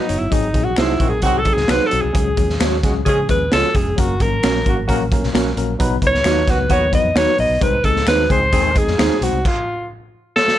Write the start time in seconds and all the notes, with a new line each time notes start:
Already playing: D#4
0.07 F#1 F#3 B3 D#4 C#5, closed hi-hat
0.18 G1 E4
0.31 G#1 F#3 C4 D#4 G#4, kick, closed hi-hat
0.53 A#1 F#3 C4 D#4 G#4, kick, closed hi-hat
0.64 F#4
0.76 C2 F#3 C4 D#4 E4 F#4 G#4 C5, finger snap, snare, closed hi-hat
0.99 A#1 D#3 F#3 C4 D#4 F#4 A#4, kick, closed hi-hat
1.09 G#4
1.22 C2 D#3 F#3 C4 D#4 F#4 G#4, kick, closed hi-hat
1.38 A4
1.44 F#3 C4 D#4 G#4, kick, closed hi-hat
1.54 G#4, snare
1.58 C#2
1.67 C2 F#3 C4 D#4 F#4 G#4 B4, finger snap, snare, closed hi-hat
1.72 C5
1.86 F#3 A4
1.90 B1 C4 D#4 F#4, closed hi-hat
2.01 C2 G#4
2.12 C#2 F#3 G#3 C#4 G#4, kick, closed hi-hat
2.36 D#2 F#3 G#3 C#4 G#4, kick, closed hi-hat
2.49 snare
2.59 D#2 F#3 G#3 C#4 F#4 G#4 C#5, finger snap, snare, closed hi-hat
2.83 C#2 C#3 F#3 G#3 C#4 F#4 G#4, kick, snare, closed hi-hat
3.05 C#3 F3 G#3 C#4 G#4, kick, closed hi-hat
3.09 G#4
3.28 D#2 F3 G#3 C#4 G#4 B4, kick, closed hi-hat
3.51 C#2 F3 G#3 C#4 F4 G#4 A4 C#5, finger snap, snare, closed hi-hat
3.74 F1 F3 G#3 C#4 G#4, kick, closed hi-hat
3.96 F#1 F#3 A#3 C#4 F#4 A#4, kick, closed hi-hat
4.20 G#1 F#3 A#3 C#4 A#4, kick, closed hi-hat
4.43 A#1 F#3 A#3 C#4 F#4 A#4, finger snap, snare, closed hi-hat
4.65 G#1 C#3 F#3 A#3 C#4 F#4, kick, closed hi-hat
4.88 A#1 C#3 F#3 A#3 C#4 F#4 A#4, kick, closed hi-hat
5.12 F#3 A#3 C#4 A#4, kick, closed hi-hat
5.23 B1, snare
5.33 A#1 F#3 A#3 C#4 F#4 A#4, finger snap, snare, closed hi-hat
5.57 A#1 F#3 A#3 C#4 A#4, closed hi-hat
5.79 B1 F#3 B3 D#4 B4, kick, closed hi-hat
6.02 C#2 F#3 B3 D#4 B4, kick, closed hi-hat
6.07 C#5
6.14 snare
6.24 D#2 F#3 B3 D#4 F4 F#4 B4, finger snap, snare, closed hi-hat
6.47 C#2 D#3 F#3 B3 D#4 F#4, kick, snare, closed hi-hat
6.51 B4
6.69 D#2 D#3 F#3 B3 D#4 F#4 B4 C#5, kick, closed hi-hat
6.91 F#3 B3 D#4 B4 D#5, kick, closed hi-hat
7.05 F2
7.15 D#2 F#3 B3 D#4 F#4 B4 C#5, finger snap, snare, closed hi-hat
7.37 A#1 F#3 B3 D#4 B4 D#5, open hi-hat
7.49 B1
7.61 C2 G#3 C4 D#4 B4 C5, kick, closed hi-hat
7.84 C#2 G#3 C4 D#4 G#4 A4, kick, closed hi-hat
7.96 snare
8.07 D#2 G#3 C4 D#4 G#4 B4 C5, finger snap, snare, closed hi-hat
8.29 C#2 D#3 G#3 C4 D#4 G#4 C5, kick, closed hi-hat
8.52 D#2 D#3 G#3 C4 D#4 G#4 C5, kick, closed hi-hat
8.75 G#3 C4 D#4 G#4 D#5, kick, closed hi-hat
8.87 F2, snare
8.98 D#2 G#3 C4 D#4 G#4 C5, finger snap, snare, closed hi-hat
9.21 B1 G#3 C4 D#4 F#4 C5, closed hi-hat
9.33 C2
9.45 F4, kick, crash
10.36 A4, snare
10.48 snare